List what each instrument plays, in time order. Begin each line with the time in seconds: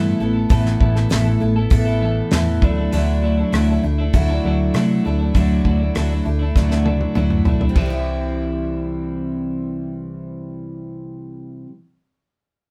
Already playing: fingered electric bass G2, clean electric guitar A2 E3 B3 E4 A4
0.19 fingered electric bass A1, clean electric guitar E3 B3 E4 A4
0.33 clean electric guitar B3 E4 A4
0.49 fingered electric bass A1, clean electric guitar A2 E3 B3 E4 A4, kick, open hi-hat
0.66 snare
0.79 fingered electric bass A1, clean electric guitar E3 B3 E4 A4, kick
0.95 clean electric guitar B3 E4 A4, snare
1.10 fingered electric bass A1, clean electric guitar A2 E3 B3 E4 A4, snare, open hi-hat
1.25 clean electric guitar B3 E4 A4
1.40 fingered electric bass A1, twelve-string acoustic guitar B3 E4 A4, muted clean electric guitar stroke
1.56 clean electric guitar B3 E4 A4
1.70 fingered electric bass A1, twelve-string acoustic guitar A2 E3 B3 E4 A4, kick, open hi-hat
1.85 clean electric guitar B3 E4 A4
2.01 clean electric guitar E3 B3 E4 A4
2.31 fingered electric bass E2, clean electric guitar A2 E3 B3 E4 A4, snare, open hi-hat
2.61 fingered electric bass D2, clean electric guitar D3 F#3 A3 D4 E4, kick
2.77 clean electric guitar A3 D4 E4
2.91 fingered electric bass D2, clean electric guitar D3 F#3 A3 D4 E4, open hi-hat
3.22 clean electric guitar F#3 A3 D4 E4
3.37 clean electric guitar A3 D4 E4
3.52 fingered electric bass D2, clean electric guitar D3 F#3 A3 D4 E4, cross-stick, open hi-hat
3.68 clean electric guitar A3 D4 E4
3.83 fingered electric bass D2, twelve-string acoustic guitar A3 D4 E4, muted clean electric guitar stroke
3.98 clean electric guitar A3 D4 E4
4.13 fingered electric bass D2, twelve-string acoustic guitar D3 F#3 A3 D4 E4, kick, open hi-hat
4.28 clean electric guitar A3 D4 E4
4.44 fingered electric bass D2, clean electric guitar F#3 A3 D4 E4
4.73 fingered electric bass C3, clean electric guitar D3 F#3 A3 D4 E4, cross-stick, open hi-hat
5.04 fingered electric bass D2, clean electric guitar F#3 A3 D4 E4
5.19 clean electric guitar A3 D4 E4
5.34 fingered electric bass D2, clean electric guitar D3 F#3 A3 D4 E4, kick, open hi-hat
5.64 fingered electric bass D2, clean electric guitar F#3 A3 D4 E4, kick
5.79 clean electric guitar A3 D4 E4
5.94 fingered electric bass D2, clean electric guitar D3 F#3 A3 D4 E4, cross-stick, open hi-hat
6.09 clean electric guitar A3 D4 E4
6.25 fingered electric bass D2, twelve-string acoustic guitar A3 D4 E4, muted clean electric guitar stroke
6.39 clean electric guitar A3 D4 E4
6.55 fingered electric bass D2, twelve-string acoustic guitar D3 F#3 A3 D4 E4, kick, snare
6.69 clean electric guitar A3 D4 E4, snare
6.84 clean electric guitar F#3 A3 D4 E4, high tom
7.01 high tom
7.14 fingered electric bass D2, clean electric guitar D3 F#3 A3 D4 E4, mid tom
7.30 mid tom
7.44 fingered electric bass B1, clean electric guitar F#3 A3 D4 E4, floor tom
7.59 clean electric guitar A3 D4 E4, floor tom
7.69 twelve-string acoustic guitar C3
7.74 fingered electric bass C2, clean electric guitar C3 E3 G3 C4 E4, kick, crash
7.81 twelve-string acoustic guitar G3
7.86 twelve-string acoustic guitar C4
7.90 twelve-string acoustic guitar E4